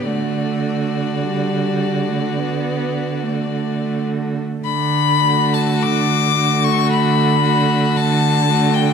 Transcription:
<<
  \new Staff \with { instrumentName = "Violin" } { \time 4/4 \key d \major \tempo 4 = 53 d''2.~ d''8 r8 | b''8. a''16 d'''8. cis'''16 b''4 a''8. g''16 | }
  \new Staff \with { instrumentName = "Violin" } { \time 4/4 \key d \major fis'1 | r8 fis'4 fis'4 fis'4 fis'8 | }
  \new Staff \with { instrumentName = "Viola" } { \time 4/4 \key d \major a4 g8. a16 b8. a16 a4 | r8 a4 a4 a4 a8 | }
  \new Staff \with { instrumentName = "Cello" } { \clef bass \time 4/4 \key d \major d1 | d4 d4 d4 d4 | }
>>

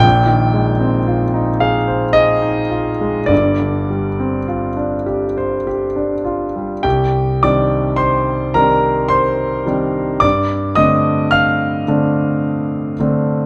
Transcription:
\new Staff \with { instrumentName = "Grand piano" } { \time 3/4 \key c \minor \tempo 4 = 54 << { g''4. f''8 ees''4 | d''2 r4 | <g' g''>8 <d'' d'''>8 <c'' c'''>8 <bes' bes''>8 <c'' c'''>4 | <d'' d'''>8 <ees'' ees'''>8 <f'' f'''>4. r8 | } \\ { <bes,, bes,>16 ees16 aes16 c'16 f'16 ees'16 aes'16 c''16 aes'16 ees'16 f'16 aes16 | <g,, g,>16 d16 g16 c'16 f'16 d'16 g'16 c''16 g'16 d'16 f'16 g16 | c,8 <ees g c' d'>4 <ees g c' d'>4 <ees g c' d'>8 | g,8 <d a c' d'>4 <d a c' d'>4 <d a c' d'>8 | } >> }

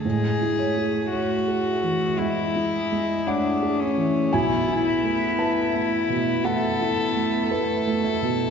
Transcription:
<<
  \new Staff \with { instrumentName = "Ambient pad" } { \time 4/4 \key a \major \tempo 4 = 56 <e' gis' e''>1 | <a e' e''>1 | }
  \new Staff \with { instrumentName = "Felt piano" } { \time 4/4 \key a \major r8 cis''4. e''4 fis''4 | gis''4 a''4 fis''4. e''8 | }
  \new Staff \with { instrumentName = "Felt piano" } { \time 4/4 \key a \major \tuplet 3/2 { a,8 e'8 gis'8 cis''8 gis'8 e8 gis8 e'8 gis8 cis''8 gis'8 e8 } | \tuplet 3/2 { b,,8 e'8 a8 b'8 a8 b,8 a8 e'8 a8 b'8 a8 b,8 } | }
  \new Staff \with { instrumentName = "Violin" } { \time 4/4 \key a \major gis'4 fis'4 e'4 d'8 cis'8 | e'8 e'4. a'4 a'4 | }
  \new Staff \with { instrumentName = "Cello" } { \time 4/4 \key a \major gis8 a8 a4 gis8 gis8 a4 | b2 b4 a4 | }
>>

